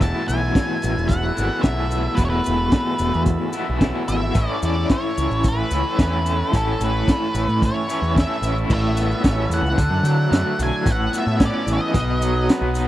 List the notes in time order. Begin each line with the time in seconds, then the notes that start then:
0.00 E1 E2 B2 E3 A3 B3 E4 A4 E5 A5 B5 E6, kick, closed hi-hat, maracas
0.28 B1 G#5, closed hi-hat, maracas
0.55 kick, snare, closed hi-hat, maracas
0.82 A1, closed hi-hat, maracas
0.97 E1, maracas
1.08 F#5, kick, closed hi-hat
1.12 maracas
1.34 E2 B2 E3 A3 B3 E4, closed hi-hat, maracas
1.38 G#1
1.61 B1 E2 B2 E3 A3 B3 E4 E5, kick, snare, closed hi-hat, maracas
1.91 closed hi-hat, maracas
2.15 E1 E2 B2 E3 A3 B3 E4 B4, kick, closed hi-hat, maracas
2.25 C#5
2.30 B4
2.44 E1, closed hi-hat, maracas
2.72 kick, snare, closed hi-hat, maracas
2.99 E1, closed hi-hat, maracas
3.14 E2, maracas
3.26 kick, closed hi-hat, maracas
3.53 E2 B2 E3 A3 B3 E4, closed hi-hat, maracas
3.70 B1
3.80 E2 B2 E3 A3 B3 E4, kick, snare, closed hi-hat, maracas
4.08 G#1 E5, closed hi-hat, maracas
4.34 A1 A2 E3 A3 C#4 E4 C#6, kick, closed hi-hat, maracas
4.62 E2 D5, closed hi-hat, maracas
4.89 C#5, kick, snare, closed hi-hat, maracas
5.17 C#2, closed hi-hat, maracas
5.30 A1, maracas
5.44 kick, closed hi-hat, maracas
5.48 B4
5.71 C#2 A2 E3 A3 C#4 E4, closed hi-hat, maracas
5.97 E2 A2 E3 A3 C#4 E4, kick, snare, closed hi-hat, maracas
6.26 closed hi-hat, maracas
6.51 A1 A2 E3 A3 C#4 E4, kick, closed hi-hat, maracas
6.57 A4
6.81 A1 B4, closed hi-hat, maracas
7.08 kick, snare, closed hi-hat, maracas
7.35 A1, closed hi-hat, maracas
7.48 A2, maracas
7.62 C#5, kick, closed hi-hat, maracas
7.87 A2 E3 A3 C#4 E4, closed hi-hat, maracas
8.02 E2, maracas
8.13 A2 E3 A3 C#4 E4, kick, maracas
8.17 E5, snare, closed hi-hat
8.42 A1, closed hi-hat, maracas
8.58 maracas
8.69 A1 A2 E4 A4 B4 C#5 E5, kick, crash, maracas
8.74 E5
8.95 B3, closed hi-hat, maracas
9.11 maracas
9.23 A1 C#4, kick, snare, closed hi-hat, maracas
9.49 E2 E3, closed hi-hat, maracas
9.54 F#5
9.62 C#2
9.66 maracas
9.76 D2 D3 F#4 D5, kick, closed hi-hat, maracas
9.90 F#2
10.03 D3 F#3, closed hi-hat, maracas
10.30 F#2 A3, snare, closed hi-hat, maracas
10.58 B1 D4, closed hi-hat, maracas
10.63 G#5
10.84 A1 A2 B4 C#5, kick, closed hi-hat, maracas
10.92 F#5
11.12 B3, closed hi-hat, maracas
11.18 E5
11.27 A2, maracas
11.38 C#4, kick, snare, closed hi-hat, maracas
11.45 D5
11.66 A1 E3, closed hi-hat, maracas
11.73 D#5
11.93 B1 B2 D#4 F#4 D#5 F#5, kick, closed hi-hat, maracas
12.21 F#3, closed hi-hat, maracas
12.49 B3, snare, closed hi-hat, maracas
12.61 B1
12.75 D#4, closed hi-hat, maracas